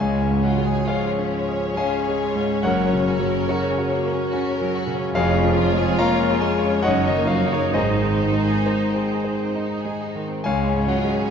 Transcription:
Already playing: cello section C#2
0.00 double bass section C#2, grand piano C#2 C#5 F5 G#5, violin section G#3 C#5, french horn section G#3, viola section C#4
0.21 violin section C#4
0.30 grand piano G#2
0.43 french horn section F#3, violin section F4, grand piano F#5
0.58 grand piano G#3
0.64 violin section G#4
0.86 french horn section F3, violin section F4, grand piano G#4 C#5 F5
1.10 violin section C#4
1.19 grand piano C#4
1.32 violin section G#3
1.48 grand piano G#4
1.55 violin section C#4
1.76 french horn section G#3, grand piano C#4 C#5 F5 G#5, violin section F4
2.01 violin section G#4
2.08 grand piano G#3
2.22 violin section F4
2.35 grand piano G#2
2.44 violin section C#4
2.62 double bass section F#1, cello section F#2, grand piano F#2 A#4 C#5 F#5, french horn section F#3, violin section A#3
2.86 violin section C#4
2.93 grand piano C#3
3.08 violin section F#4
3.20 grand piano F#3
3.26 violin section A#4
3.48 french horn section C#3, violin section F#4, grand piano F#4 A#4 C#5
3.70 violin section C#4
3.78 grand piano F#4
3.91 violin section A#3
4.05 grand piano A#4
4.13 violin section C#4
4.31 grand piano C#4, violin section F#4
4.52 violin section A#4
4.62 grand piano F#3
4.74 violin section F#4
4.87 grand piano C#3
4.93 violin section C#4
5.14 double bass section F1, cello section F2, grand piano F2 G#4 C#5 F5, french horn section F3, violin section G#3 C#5, viola section F4
5.34 violin section C#4
5.44 grand piano F3
5.54 violin section F4
5.73 grand piano G#3, violin section G#4
5.97 french horn section A#3, violin section F4, grand piano C#5 F5 A#5
6.20 violin section C#4
6.30 grand piano G#4
6.41 violin section G#3, french horn section G#3, grand piano G#5
6.59 violin section C#4, grand piano C#5
6.83 double bass section F#1, cello section F#2, french horn section F#3, violin section C#4, viola section D#4, grand piano C#5 D#5 F#5
6.88 grand piano F#2
7.04 french horn section D#3, violin section D#4, grand piano D#5
7.16 grand piano A#3
7.27 french horn section F3, violin section F#4, grand piano F5
7.46 french horn section C#3, grand piano D#4 C#5
7.51 violin section A#4, grand piano C#5
7.70 double bass section G#1, cello section G#2, grand piano G#2 D#5, french horn section D#3, violin section G#3 C5
7.74 grand piano G#4 C5
7.96 violin section C4
8.03 grand piano D#3
8.19 violin section D#4
8.32 grand piano G#3
8.42 violin section G#4
8.66 violin section D#4, grand piano C5
8.90 violin section C4
8.95 grand piano G#4
9.14 violin section G#3
9.24 grand piano C5
9.37 violin section C4
9.55 grand piano D#4, violin section D#4
9.81 violin section G#4
9.85 grand piano G#3
10.04 violin section D#4
10.15 grand piano D#3
10.26 violin section C4
10.44 grand piano C#2 C#5 F5 G#5, double bass section C#2, cello section C#3, french horn section G#3, violin section G#3 C#5, viola section C#4
10.68 violin section C#4
10.74 grand piano G#2
10.88 french horn section F#3, violin section F4, grand piano F#5
11.04 grand piano G#3
11.11 violin section G#4

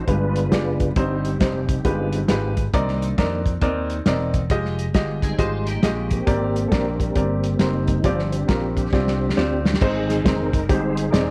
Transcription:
0.07 slap bass G1, grand piano G2 G#3 F4 G4 B4, tonewheel organ G#3 B3 D4 F4 B4, kick, closed hi-hat
0.36 closed hi-hat
0.51 slap bass F#1, grand piano G#3 F4 G4 D5, tonewheel organ D4 F4 B4, snare, closed hi-hat
0.80 kick, closed hi-hat
0.96 slap bass G1, grand piano G2 G3 C4 D#4 C5, tonewheel organ G3 C4 D#4 G4, kick, closed hi-hat
1.25 closed hi-hat
1.40 slap bass F1, grand piano G3 C4 D#4 C5, kick, snare, closed hi-hat
1.69 kick, closed hi-hat
1.85 slap bass G1, grand piano G2 G#3 F4 G4 B4, tonewheel organ G#3 B3 F4, kick, closed hi-hat
2.13 closed hi-hat
2.28 slap bass G#1, grand piano G#3 F4 G4 B4, snare, closed hi-hat
2.57 kick, closed hi-hat
2.72 slap bass C2, grand piano C3 C4 D#4 A#4 D5, tonewheel organ D#3 A#3 D4, kick, closed hi-hat
2.88 snare
3.02 closed hi-hat
3.18 slap bass F2, grand piano C4 D#4 A#4 D5, kick, snare, closed hi-hat
3.46 kick, closed hi-hat
3.61 slap bass D#2, grand piano C4 D#4 A#4 D5, kick, closed hi-hat
3.90 closed hi-hat
4.06 slap bass E1, grand piano C4 D#4 A#4 D5, snare, closed hi-hat
4.34 kick, closed hi-hat
4.50 slap bass F1, grand piano G#3 F4 G4 D#5, kick, closed hi-hat
4.65 snare
4.79 closed hi-hat
4.94 slap bass G1, grand piano G#3 F4 G4 D#5, kick, snare, closed hi-hat
5.22 tonewheel organ G3 G#3 D#4, clean electric guitar C4 G#4, kick, closed hi-hat
5.39 slap bass G#1, grand piano G#3 F4 G4 D#5, clean electric guitar D#4 C5, kick, closed hi-hat
5.67 clean electric guitar A#3 G4, closed hi-hat
5.83 slap bass A#1, grand piano G#3 F4 G4 D#5, snare, closed hi-hat
6.11 tonewheel organ A#3 C4 G4, kick, closed hi-hat
6.27 slap bass G#1, grand piano G#2 C4 G4 A#4 D5, kick, closed hi-hat
6.56 closed hi-hat
6.68 grand piano C4 G4 D5, tonewheel organ A4
6.72 slap bass A#1, tonewheel organ D4 G4 A#4, grand piano A#4, kick, snare, closed hi-hat
7.00 tonewheel organ G3 A#3 C4 D4, kick, closed hi-hat
7.16 slap bass G1, tonewheel organ A#3 C4 G4, grand piano C4 G4 A#4 D5, kick, closed hi-hat
7.44 closed hi-hat
7.59 slap bass F#1, tonewheel organ G3 C4 D#4, grand piano C4 G4 A#4 C5, snare, closed hi-hat
7.88 kick, closed hi-hat
8.02 slap bass G1, grand piano G2 C4 F4 G4 D5, tonewheel organ F3 C4 D4 F4, kick, closed hi-hat
8.19 snare
8.32 tonewheel organ C4 D4 G4, closed hi-hat
8.48 slap bass A#1, grand piano C4 F4 G4 A#4, kick, snare, closed hi-hat
8.77 kick, closed hi-hat
8.93 slap bass C2, grand piano C4 F4 G4 D5, kick, snare
9.07 snare
9.29 snare
9.37 slap bass D2, grand piano C4 F4 G4 D5, snare
9.65 snare
9.74 tonewheel organ G4, snare
9.81 slap bass G#1, grand piano G#2 G#3 C4 D#4 C5, tonewheel organ D#3 G#3 C4 D#4 G#4, kick, crash
10.10 snare, closed hi-hat
10.25 slap bass F1, grand piano G#3 C4 D#4 C5, tonewheel organ D#4 A#4, kick, snare, closed hi-hat
10.53 kick, closed hi-hat
10.69 slap bass G1, grand piano G#3 C4 D#4 G4, tonewheel organ D#4 G#4 C5, kick, closed hi-hat
10.97 closed hi-hat
11.10 slap bass E1, grand piano G#3 C4 D#4 D5, tonewheel organ A#4, snare, closed hi-hat
11.15 tonewheel organ C4 D#4 G#4

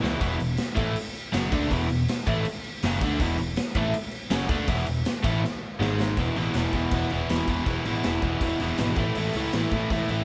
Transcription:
Already playing: overdriven electric guitar B3
0.01 picked electric bass C#2, overdriven electric guitar E2 B2 E3, snare
0.19 picked electric bass E1, overdriven electric guitar E2 B2 E3, kick, crash
0.38 picked electric bass E1, overdriven electric guitar E2 B2, crash
0.57 snare, crash
0.75 picked electric bass A1, overdriven electric guitar A2 E3 A3, kick, crash
0.96 crash
1.15 crash
1.32 picked electric bass F#1, overdriven electric guitar F#2 C#3 F#3, snare, crash
1.52 picked electric bass D2, overdriven electric guitar D3 A3 D4, kick, crash
1.69 picked electric bass E1, overdriven electric guitar E2 B2 E3, kick, crash
1.89 picked electric bass E1, overdriven electric guitar E2 B2, crash
2.08 snare, crash
2.27 picked electric bass A1, overdriven electric guitar A2 E3 A3, kick, crash
2.45 crash
2.64 crash
2.83 picked electric bass F#1, overdriven electric guitar F#2 C#3 F#3, snare, crash
3.01 picked electric bass D2, overdriven electric guitar D3 A3 D4, kick, crash
3.19 picked electric bass E1, overdriven electric guitar E2 B2 E3, kick, crash
3.38 picked electric bass E1, overdriven electric guitar E2 B2, crash
3.56 snare, crash
3.75 picked electric bass A1, overdriven electric guitar A2 E3 A3, kick, crash
3.94 crash
4.11 crash
4.30 picked electric bass F#1, overdriven electric guitar F#2 C#3 F#3, snare, crash
4.49 picked electric bass D2, overdriven electric guitar D3 A3 D4, kick, crash
4.67 picked electric bass E1, overdriven electric guitar E2 B2 E3, kick, crash
4.86 picked electric bass E1, overdriven electric guitar E2 B2, crash
5.05 snare, crash
5.23 picked electric bass A1, overdriven electric guitar A2 E3 A3, kick, crash
5.44 snare
5.80 picked electric bass G#1, overdriven electric guitar G#2 D#3 G#3, snare
6.00 snare
6.17 picked electric bass E1, overdriven electric guitar E2 B2 E3, kick, crash
6.36 picked electric bass A1, overdriven electric guitar E2 B2 E3, crash
6.54 picked electric bass E1, overdriven electric guitar E2 B2 E3, snare, crash
6.73 picked electric bass E1, overdriven electric guitar E2 B2 E3, kick, crash
6.91 picked electric bass E1, overdriven electric guitar E2 B2 E3, kick, crash
7.10 picked electric bass E1, overdriven electric guitar E2 B2 E3, crash
7.29 picked electric bass E1, overdriven electric guitar E2 B2 E3, snare, crash
7.47 picked electric bass E1, overdriven electric guitar E2 B2 E3, kick, crash
7.66 picked electric bass E1, overdriven electric guitar E2 B2 E3, kick, crash
7.85 picked electric bass A1, overdriven electric guitar E2 B2 E3, crash
8.03 picked electric bass E1, overdriven electric guitar E2 B2 E3, snare, crash
8.22 picked electric bass E1, overdriven electric guitar E2 B2 E3, kick, crash
8.41 picked electric bass E1, overdriven electric guitar E2 B2 E3, kick, crash
8.60 picked electric bass E1, overdriven electric guitar E2 B2 E3, crash
8.78 picked electric bass G#1, overdriven electric guitar E2 B2 E3, snare, crash
8.96 picked electric bass A1, overdriven electric guitar A2 E3 A3, kick, crash
9.15 picked electric bass A1, overdriven electric guitar A2 E3 A3, crash
9.33 picked electric bass C#2, overdriven electric guitar A2 E3 A3, crash
9.52 picked electric bass A1, overdriven electric guitar A2 E3 A3, snare, crash
9.71 picked electric bass A1, overdriven electric guitar A2 E3 A3, kick, crash
9.90 picked electric bass A1, overdriven electric guitar A2 E3 A3, kick, crash
10.09 picked electric bass A1, overdriven electric guitar A2 E3 A3, crash

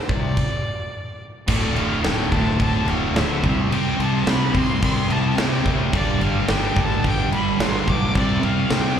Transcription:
Already playing: erhu C5
0.09 fingered electric bass C2, overdriven electric guitar C3, erhu D5, kick
0.37 kick, crash
1.48 fingered electric bass D1, overdriven electric guitar D2 A2 D3, erhu D5, kick, crash
1.76 fingered electric bass D1, overdriven electric guitar D2 A2 D3, erhu F5, crash
2.04 fingered electric bass D1, overdriven electric guitar D2 A2 D3, erhu G5, snare, crash
2.32 fingered electric bass D1, overdriven electric guitar D2 A2 D3, erhu A5, kick, crash
2.60 fingered electric bass D1, overdriven electric guitar D2 A2 D3, erhu A5, kick, crash
2.88 fingered electric bass D1, overdriven electric guitar D2 A2 D3, erhu F5, crash
3.16 fingered electric bass D1, overdriven electric guitar D2 A2 D3, erhu E5, snare, crash
3.44 fingered electric bass C2, overdriven electric guitar C3 G3 C4, kick, crash
3.71 fingered electric bass C2, overdriven electric guitar C3 G3 C4, erhu G5, crash
3.99 fingered electric bass C2, overdriven electric guitar C3 G3 C4, erhu A5, crash
4.27 fingered electric bass C2, overdriven electric guitar C3 G3 C4, erhu B5, snare, crash
4.55 fingered electric bass C2, overdriven electric guitar C3 G3 C4, erhu C6, kick, crash
4.82 fingered electric bass C2, overdriven electric guitar C3 G3 C4, erhu C6, kick, crash
5.09 fingered electric bass C2, overdriven electric guitar C3 G3 C4, erhu A5, crash
5.38 fingered electric bass C2, overdriven electric guitar C3 G3 C4, erhu G5, snare, crash
5.66 fingered electric bass C2, overdriven electric guitar C3 G3 C4, kick, crash
5.93 fingered electric bass G1, overdriven electric guitar G2 D3 G3, erhu D5, kick, crash
6.21 fingered electric bass G1, overdriven electric guitar G2 D3 G3, erhu F5, crash
6.48 fingered electric bass G1, overdriven electric guitar G2 D3 G3, erhu G5, snare, crash
6.76 fingered electric bass G1, overdriven electric guitar G2 D3 G3, erhu A5, kick, crash
7.04 fingered electric bass G1, overdriven electric guitar G2 D3 G3, erhu G5, kick, crash
7.31 fingered electric bass G1, overdriven electric guitar G2 D3 G3, erhu B5, crash
7.60 fingered electric bass G1, overdriven electric guitar G2 D3 G3, erhu C6, snare, crash
7.88 fingered electric bass B1, overdriven electric guitar G2 D3 G3, erhu D6, kick, crash
8.15 fingered electric bass C2, overdriven electric guitar C3 G3 C4, erhu D5, kick, crash
8.43 fingered electric bass C2, overdriven electric guitar C3 G3 C4, erhu F5, crash
8.70 fingered electric bass C2, overdriven electric guitar C3 G3 C4, erhu G5, snare, crash

